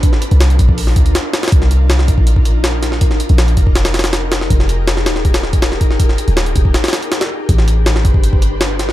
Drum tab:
HH |x---x-x-x-x-x---o---x-x-x---x-xx|x---x---x---x---x---x---x---x---|x---x-x-x-x-x---x-x-xxx-x---x---|x---x---x---x---x-x---x-x---x---|
SD |--o-----o---------o-----o---o-oo|--o-----o-o-------------o---o-o-|--o-----o-------o-o-ooo-o---o-o-|--o-----o-o-o-o---o-o---o-o---o-|
BD |o-----------o-o-----o-----------|o-----------o-o---o-------------|o-----------o-o-----------------|o---------------o-----o-----o---|

HH |x---x-x-x-x-x---x-xxx-x-x-x-----|x---x---x---x---x---x---x---x---|
SD |--o-----o-------o-ooo---o-o-----|--o-----o-o-------------o---o-o-|
BD |o-----------o-o-----------------|o-----------o-o---o-------------|